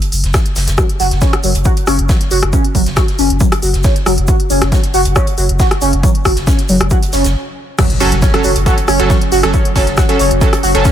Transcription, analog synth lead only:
0.78 0.85 F#3 medium
1.00 1.07 F#4 medium
1.22 1.32 C#4 medium
1.44 1.50 F#3 medium
1.65 1.72 F#4 medium
1.87 1.98 C#4 medium
2.09 2.16 F#3 medium
2.31 2.38 F#4 medium
2.53 2.63 C#4 medium
2.75 2.82 F#3 medium
2.97 3.04 F#4 medium
3.19 3.29 C#4 medium
3.41 3.47 F#3 medium
3.62 3.69 F#4 medium
3.84 3.95 C#4 medium
4.06 4.13 F#3 medium
4.28 4.35 F#4 medium
4.50 4.60 C#4 medium
4.72 4.79 F#3 medium
4.94 5.01 F#4 medium
5.16 5.26 C#4 medium
5.38 5.44 F#3 medium
5.60 5.66 F#4 medium
5.81 5.92 C#4 medium
6.03 6.10 F#3 medium
6.25 6.32 F#4 medium
6.47 6.57 C#4 medium
6.69 6.76 F#3 medium
6.91 6.98 F#4 medium
7.13 7.23 C#4 medium
7.79 7.85 F#3 medium
8.00 8.07 F#4 medium
8.22 8.33 C#4 medium
8.44 8.51 F#3 medium
8.66 8.73 F#4 medium
8.88 8.98 C#4 medium
9.10 9.17 F#3 medium
9.32 9.39 F#4 medium
9.54 9.64 C#4 medium
9.76 9.82 F#3 medium
9.97 10.04 F#4 medium
10.19 10.30 C#4 medium
10.41 10.48 F#3 medium
10.63 10.70 F#4 medium
10.85 10.92 C#4 medium

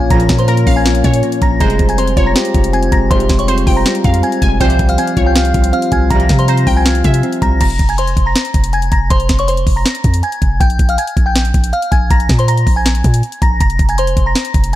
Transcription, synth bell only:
0.11 0.37 A#5 loud
0.11 0.37 A#6 medium
0.39 0.48 C5 medium
0.39 0.48 C6 medium
0.48 0.74 A#5 medium
0.48 0.75 A#6 medium
0.76 1.38 G#5 medium
0.76 1.38 G#6 medium
1.42 1.59 A#5 medium
1.42 1.60 A#6 medium
1.61 1.87 A#5 loud
1.61 1.87 A#6 medium
1.89 1.98 G#5 medium
1.89 1.98 G#6 medium
1.98 2.25 C5 medium
1.98 2.25 C6 medium
2.26 2.70 A#5 medium
2.26 2.71 A#6 medium
2.73 2.91 G#5 medium
2.73 2.91 G#6 medium
2.92 3.10 A#5 medium
2.92 3.10 A#6 medium
3.11 3.37 C5 medium
3.11 3.37 C6 loud
3.39 3.48 C#5 medium
3.39 3.48 C#6 medium
3.48 3.75 C5 medium
3.48 3.75 C6 medium
3.76 4.20 A#5 medium
3.76 4.21 A#6 medium
4.23 4.58 G#5 medium
4.23 4.59 G#6 medium
4.61 4.87 G5 loud
4.61 4.87 G6 medium
4.89 4.98 F5 medium
4.89 4.98 F6 medium
4.98 5.25 G#5 medium
4.98 5.25 G#6 medium
5.26 5.70 G5 medium
5.26 5.71 G6 medium
5.73 5.91 F5 medium
5.73 5.91 F6 medium
5.92 6.10 G#5 medium
5.92 6.10 G#6 medium
6.10 6.37 A#5 loud
6.10 6.37 A#6 medium
6.39 6.48 C5 medium
6.39 6.48 C6 medium
6.48 6.75 A#5 medium
6.48 6.75 A#6 medium
6.76 7.38 G#5 medium
6.76 7.38 G#6 medium
7.42 7.60 A#5 medium
7.42 7.60 A#6 medium
7.61 7.87 A#5 medium
7.61 7.88 A#6 medium
7.89 7.98 G#5 medium
7.89 7.98 G#6 medium
7.98 8.25 C5 medium
7.98 8.25 C6 medium
8.26 8.70 A#5 medium
8.26 8.71 A#6 medium
8.73 8.91 G#5 medium
8.73 8.91 G#6 medium
8.92 9.10 A#5 medium
8.92 9.10 A#6 medium
9.10 9.37 C5 medium
9.10 9.37 C6 loud
9.39 9.48 C#5 medium
9.39 9.48 C#6 medium
9.48 9.75 C5 medium
9.48 9.74 C6 medium
9.76 10.20 A#5 medium
9.76 10.21 A#6 medium
10.23 10.58 G#5 medium
10.23 10.59 G#6 medium
10.60 10.87 G5 loud
10.60 10.87 G6 medium
10.89 10.98 F5 medium
10.89 10.98 F6 medium
10.98 11.24 G#5 medium
10.98 11.25 G#6 medium
11.26 11.70 G5 medium
11.26 11.70 G6 medium
11.73 11.91 F5 medium
11.73 11.91 F6 medium
11.91 12.09 G#5 medium
11.91 12.10 G#6 medium
12.11 12.37 A#5 loud
12.11 12.37 A#6 medium
12.39 12.48 C5 medium
12.39 12.48 C6 medium
12.48 12.75 A#5 medium
12.48 12.75 A#6 medium
12.76 13.38 G#5 medium
12.76 13.38 G#6 medium
13.42 13.59 A#5 medium
13.42 13.60 A#6 medium
13.61 13.87 A#5 medium
13.61 13.87 A#6 medium
13.89 13.98 G#5 medium
13.89 13.98 G#6 medium
13.98 14.25 C5 medium
13.98 14.25 C6 medium
14.26 14.70 A#5 medium
14.26 14.71 A#6 medium

